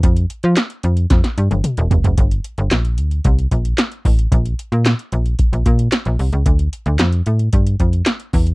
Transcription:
<<
  \new Staff \with { instrumentName = "FM bass" } { \clef bass \time 4/4 \key g \dorian \tempo 4 = 112 f,8 r16 f16 r8 f,8 f,16 r16 g,16 g,,16 r16 e,,16 f,,16 fis,,16 | g,,8 r16 g,,16 bes,,8 d,8 c,8 bes,,8 r8 a,,8 | bes,,8 r16 bes,8 r16 bes,,8 r16 bes,,16 bes,8 r16 bes,,16 c,16 des,16 | d,8 r16 d,16 f,8 a,8 g,8 f,8 r8 e,8 | }
  \new DrumStaff \with { instrumentName = "Drums" } \drummode { \time 4/4 <hh bd>16 hh16 hh16 hh16 <hc hh sn>16 hh16 hh16 hh16 <hh bd sn>16 <hh sn>16 hh16 <hh tommh>16 <hh toml>16 hh16 <hh tomfh>16 <hh tomfh>16 | <hh bd>16 hh16 hh16 hh16 <hc hh sn>16 hh16 hh16 hh16 <hh bd>16 hh16 <hh bd>16 hh16 <hc hh sn>16 hh16 <hho bd>16 hh16 | <hh bd>16 hh16 hh16 hh16 <hc hh sn>16 hh16 hh16 hh16 <hh bd>16 hh16 <hh bd>16 hh16 <hc hh sn>16 hh16 hho16 hh16 | <hh bd>16 hh16 hh16 hh16 <hc hh sn>16 hh16 hh16 hh16 <hh bd>16 hh16 <hh bd>16 hh16 <hc hh sn>16 hh16 <hho bd>16 hh16 | }
>>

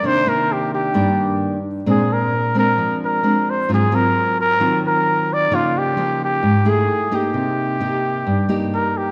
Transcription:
<<
  \new Staff \with { instrumentName = "Trumpet" } { \time 4/4 \key c \minor \tempo 4 = 131 c''8 bes'8 g'8 g'2 r8 | aes'8 bes'4 bes'4 bes'4 c''8 | aes'8 bes'4 bes'4 bes'4 d''8 | f'8 g'4 g'4 aes'4 g'8~ |
g'2. bes'8 g'8 | }
  \new Staff \with { instrumentName = "Nylon-string guitar" } { \time 4/4 \key c \minor << { <ees bes d'>8 <ees bes d'>4. <ees bes d'>4. r8 | <aes c' d'>4 r8 <aes c' d'>4. <aes c' d'>4 | <ges c' f'>8 <ges c' f'>4. <ges c' f'>2 | <f bes ees'>4 <f bes ees'>4 r8 <a e' aes'>4 <bes ees' g'>8~ |
<bes ees' g'>4 <bes ees' g'>4 r8 <bes ees' g'>4. | } \\ { c2 g,2 | bes,2 f2 | aes,2 ees2 | des2 aes,4 r4 |
c2 g,2 | } >> }
>>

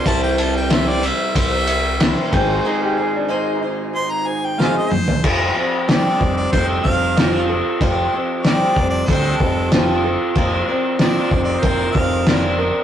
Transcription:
<<
  \new Staff \with { instrumentName = "Harmonica" } { \time 4/4 \key f \major \tempo 4 = 94 a''16 g''16 a''16 g''16 e''16 d''16 e''8 e''4. r8 | r2 c'''16 bes''16 aes''16 g''16 f''16 ees''16 c''8 | r4 d''8. d''16 c''8 f''4 r8 | r4 d''8. d''16 c''8 a'4 r8 |
r4 d''8. d''16 c''8 f''4 r8 | }
  \new Staff \with { instrumentName = "Pedal steel guitar" } { \time 4/4 \key f \major r2. r8 g''16 c''16 | aes'16 g'16 aes'16 d'16 r2. | r1 | r1 |
r1 | }
  \new Staff \with { instrumentName = "Steel-string acoustic guitar" } { \time 4/4 \key f \major <c e g c' e' c''>8 <g c' e' c''>8 <c e g c' e' c''>8 <g c' e' c''>8 <g c' e' c''>8 <g c' e' c''>8 <c e g c' e' c''>8 <ees' aes' c''>8 | <aes ees' aes' c''>8 <ees' aes' c''>8 <aes ees' aes' c''>8 <ees' aes' c''>8 <aes ees' aes' c''>8 <ees' aes' c''>8 <aes ees' aes' c''>8 <ees' aes' c''>8 | <f g c' g' a'>8 <c' g' a'>8 <f g c' g' a'>8 <c' g' a'>8 <g c' g' a'>8 <c' g' a'>8 <f g c' g' a'>8 <c' g' a'>8 | <f g c' g' a'>8 <c' g' a'>8 <f g c' g' a'>8 a'8 <g c' g' a'>8 <c' g' a'>8 <f g c' g' a'>8 <c' g' a'>8 |
<f bes c' bes' d''>8 <c' bes' d''>8 <f bes c' bes' d''>8 <c' bes' d''>8 <bes c' bes' d''>8 <c' bes' d''>8 <f bes c' bes' d''>8 <c' bes' d''>8 | }
  \new Staff \with { instrumentName = "Clean electric guitar" } { \time 4/4 \key f \major <c g c' e' g'>2.~ <c g c' e' g'>8 <aes, ees aes c' ees' aes'>8~ | <aes, ees aes c' ees' aes'>2. <aes, ees aes c' ees' aes'>8 r8 | f8 c'8 g8 c'8 a'8 c'8 f'8 a'8 | f8 c'8 g8 c'8 a'8 c'8 f'8 a'8 |
f8 c'8 f8 c'8 bes'8 c'8 d'8 bes'8 | }
  \new Staff \with { instrumentName = "Picked electric bass" } { \clef bass \time 4/4 \key f \major c,2 c,4. aes,,8 | r1 | f,,8 r4 f,,8 f,,8 f,,4. | f,,8 r4 f,,8 d,8 f,,4. |
f,,8 r4 f,,8 f,,8 f,,4. | }
  \new DrumStaff \with { instrumentName = "Drums" } \drummode { \time 4/4 <bd cymr>8 cymr8 <cymr sn>8 cymr8 <bd cymr>8 cymr8 <cymr sn>8 <bd cymr>8 | r4 r4 r4 sn8 toml16 tomfh16 | <cymc bd>4 <cymc sn>8 bd8 <cymc bd>8 bd8 <cymc sn>4 | <cymc bd>4 <cymc sn>8 bd8 <cymc bd>8 bd8 <cymc sn>4 |
<cymc bd>4 <cymc sn>8 bd8 <cymc bd>8 bd8 <cymc sn>4 | }
>>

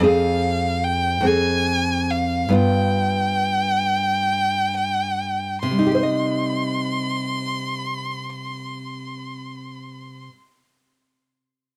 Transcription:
<<
  \new Staff \with { instrumentName = "Violin" } { \time 12/8 \key c \minor \tempo 4. = 39 f''4 g''8 aes''4 f''8 g''2. | c'''1. | }
  \new Staff \with { instrumentName = "Nylon-string guitar" } { \time 12/8 \key c \minor <f, c' aes'>4. <f, c' aes'>4. <g, b f'>2. | <c g ees' g' c'' ees''>1. | }
>>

